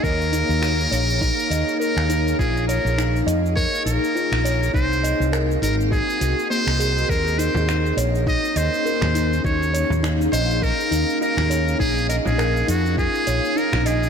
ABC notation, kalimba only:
X:1
M:4/4
L:1/16
Q:"Swing 16ths" 1/4=102
K:Ebdor
V:1 name="Kalimba"
B z E2 G2 d2 E z e z B z E2 | F2 d2 E z e z B z E2 F2 d2 | E z e z B z E2 G2 G2 B,2 A z | B z E2 G2 d2 E z e z B z E2 |
G2 d2 E z e z B z E2 G2 d2 | E z e z B z E2 F2 d2 E z e z |]